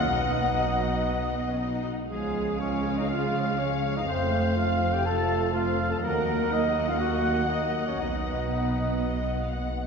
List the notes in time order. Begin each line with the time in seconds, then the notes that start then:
Already playing: D#5 F5 F#5
0.08 B1 B2 F#3 B3 D#4 D#5
0.58 F#3
1.09 B3
1.48 C#4
1.59 D#4
2.09 C#2 C#3 F3 G#3 G#4 C#5 F5
2.59 F3 G#3 C#4 C#5
2.97 B3 D#4 D#5
3.08 F3 G#3 C#4 F4 F5
3.58 F3 G#3 C#4 C#5
3.96 B3 D#4 D#5
4.07 F1 F2 F3 A3 C4 C5
4.56 F3 A3 C4 F4 F5
4.93 E4 G4 G5
5.05 F3 A3 F4 A4 A5
5.53 F3 A3 C4 F4 F5
5.90 F4 A4 A5
6.01 D#2 F#3 A#3 A#4 D#5 F#5
6.51 F#3 A#3 D#4 D#5
6.88 C#4 F4 F5
6.99 F#3 A#3 D#4 F#4 F#5
7.49 F#3 A#3 D#4 D#5
7.87 A#3 C#4 C#5
8.00 B1 B2 F#3 B3 D#4 D#5
8.52 B4
9.03 D#5
9.41 F5
9.52 F#5